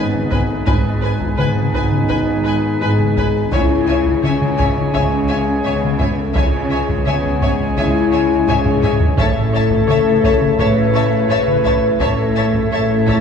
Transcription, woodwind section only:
Already playing: D#4 G#4 B4 G#5
0.66 D#4 G#4 B4 G#5
3.53 C#4 G#4 C#5 G#5
6.36 C#4 G#4 C#5 G#5
9.17 E4 A4 C#5 E5
12.00 E4 A4 C#5 E5

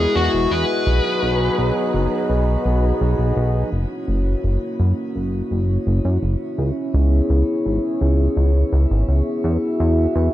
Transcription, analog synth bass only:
0.16 E2
0.33 E1
0.51 E2
0.87 B1
1.22 B1
1.58 B1
1.94 F#1
2.30 B1
2.65 B1
3.01 B1
3.19 B1
3.37 B1
3.72 F#1
4.08 F#1
4.44 F#1
4.80 F#2
5.15 F#1
5.51 F#1
5.87 F#1
6.05 F#2
6.23 F#1
6.58 C#2
6.94 C#2
7.30 C#2
7.66 G#1
8.01 C#2
8.37 C#2
8.73 C#2
8.91 G#1
9.08 C#2
9.44 E2
9.80 E2
10.15 E2

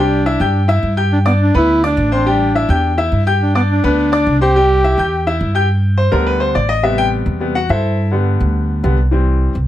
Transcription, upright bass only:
Already playing: C2
0.40 G2
0.83 G2
1.54 D2
1.97 A1
2.69 E2
3.12 G2
3.84 D2
4.27 C2
4.98 E2
5.41 G2
6.12 D2
6.55 A1
7.26 E2
7.69 G2
8.40 D2
8.84 C2
9.55 C2

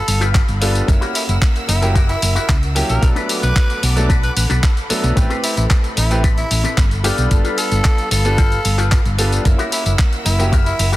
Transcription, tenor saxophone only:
Already playing: A4
1.15 E4
1.29 E4
1.69 E4
2.09 E4
2.36 E4
2.89 A#4
3.43 B4
4.23 B4
4.37 B4
5.44 E4
5.57 E4
5.97 E4
6.38 E4
7.04 G4
7.18 G4
7.58 A4
8.11 A4
9.72 E4
9.86 E4
10.25 E4
10.66 E4
10.93 E4

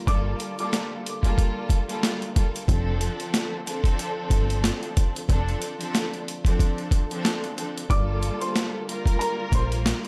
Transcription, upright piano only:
0.07 D5 D6
0.60 D5 D6
7.90 D5 D6
8.41 C5 C6
9.19 A#4 A#5
9.55 C5 C6

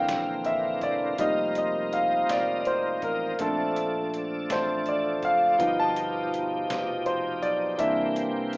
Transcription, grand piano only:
Already playing: E3 A#3 D4 F5 G5
0.46 E5
0.83 D5
1.18 G3 A#3 D#4 D#5
1.58 D#5
1.93 F5
2.30 D5
2.60 D5
2.67 C5
3.04 A#4
3.39 A3 C4 D4 A4
4.50 A3 C4 D4 C5
4.89 D5
5.25 F5
5.59 F3 B3 D#4
5.79 A5
7.06 C5
7.42 D5
7.78 E3 A#3 D4 E5

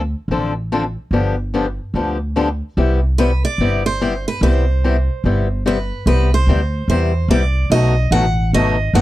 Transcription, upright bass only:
Already playing: D2
0.28 A1
1.11 G1
1.94 D2
2.77 C2
3.58 G1
4.41 C2
5.24 G1
6.06 C2
6.47 D2
6.88 E2
7.28 C2
7.70 B1
8.11 A1
8.53 G#1
8.93 F#1

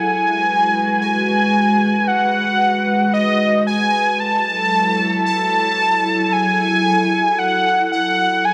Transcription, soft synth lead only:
Already playing: G#5
1.01 G#5
2.07 F#5
3.14 D#5
3.67 G#5
4.20 A5
5.26 A5
6.32 G#5
7.38 F#5
7.92 F#5
8.45 G#5

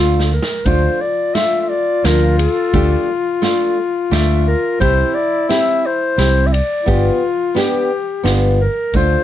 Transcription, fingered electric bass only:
Already playing: D2
0.65 D2
2.04 D2
2.74 D2
4.12 D2
4.81 C2
6.18 C2
6.88 G1
8.24 G1
8.94 D2

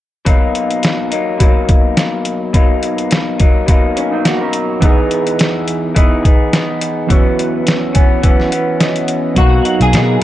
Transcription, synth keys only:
4.80 E3 B3 D#4
4.85 G#4
7.07 E3 B3 C#4
7.12 F#4
7.95 G#5
8.24 F#5
8.80 D#5
9.35 F#3 B3 D#4
9.39 A#5

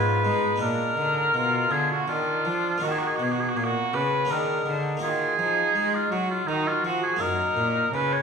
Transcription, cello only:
Already playing: G#2
0.25 G#3
0.61 A#2
0.98 D3
1.35 B2
1.73 D3
2.09 D#3
2.46 F3
2.83 D#3
3.20 B2
3.57 A#2
3.95 C#3
4.30 D#3
4.66 D3
5.02 D#3
5.39 F3
5.75 G#3
6.11 F#3
6.47 D#3
6.84 F3
7.20 F#2
7.57 A#2
7.93 C#3

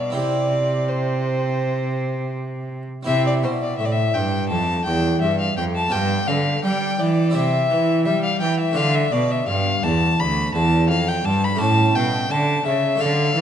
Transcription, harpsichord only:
Already playing: B2 G4
0.10 C4 E4 G4
0.15 C3
3.03 C4 E4 G4
3.07 C3
3.43 B2
3.79 A2
4.15 G2
4.50 F2
4.86 E2
5.22 G2
5.57 F2
5.88 B3 F4 G4
5.93 G2
6.28 D3
6.64 G3
6.99 E3
7.30 C4 E4 G4
7.34 C3
7.70 E3
8.05 G3
8.40 E3
8.71 A3 D4 F4
8.76 D3
9.12 B2
9.47 G2
9.84 E2
10.19 D2
10.54 E2
10.89 F2
11.25 G2
11.56 A3 C#4 G4
11.60 A2
11.95 B2
12.30 D3
12.65 C#3
12.95 A3 D4 A4
13.00 D3
13.35 E3

